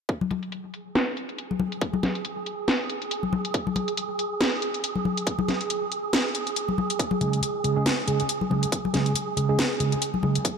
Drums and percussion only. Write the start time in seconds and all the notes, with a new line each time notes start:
0.09 kick, closed hi-hat
0.21 high conga
0.31 closed hi-hat, high conga
0.43 closed hi-hat
0.52 closed hi-hat
0.74 closed hi-hat
0.95 snare, closed hi-hat
1.17 closed hi-hat
1.29 closed hi-hat
1.38 closed hi-hat
1.51 high conga
1.60 high conga
1.72 closed hi-hat
1.81 kick, closed hi-hat
1.93 high conga
2.03 snare, closed hi-hat, high conga
2.15 closed hi-hat
2.25 closed hi-hat
2.46 closed hi-hat
2.68 snare, closed hi-hat
2.90 closed hi-hat
3.02 closed hi-hat
3.11 closed hi-hat
3.23 high conga
3.33 high conga
3.45 closed hi-hat
3.54 kick, closed hi-hat
3.67 high conga
3.76 closed hi-hat, high conga
3.88 closed hi-hat
3.97 closed hi-hat
4.19 closed hi-hat
4.41 snare, closed hi-hat
4.62 closed hi-hat
4.74 closed hi-hat
4.84 closed hi-hat
4.96 high conga
5.05 high conga
5.17 closed hi-hat
5.27 kick, closed hi-hat
5.39 high conga
5.48 snare, closed hi-hat, high conga
5.61 closed hi-hat
5.70 closed hi-hat
5.92 closed hi-hat
6.13 snare, closed hi-hat
6.35 closed hi-hat
6.47 closed hi-hat
6.56 closed hi-hat
6.68 high conga
6.78 high conga
6.90 closed hi-hat
6.99 kick, closed hi-hat
7.11 high conga
7.21 closed hi-hat, high conga
7.33 closed hi-hat
7.43 closed hi-hat
7.64 closed hi-hat
7.86 snare, closed hi-hat
8.08 closed hi-hat
8.20 closed hi-hat
8.29 closed hi-hat
8.41 high conga
8.51 high conga
8.63 closed hi-hat
8.72 kick, closed hi-hat
8.85 high conga
8.94 snare, closed hi-hat, high conga
9.06 closed hi-hat
9.15 closed hi-hat
9.37 closed hi-hat
9.59 snare, closed hi-hat
9.80 closed hi-hat
9.92 closed hi-hat
10.02 closed hi-hat
10.14 high conga
10.23 high conga
10.35 closed hi-hat
10.45 kick, closed hi-hat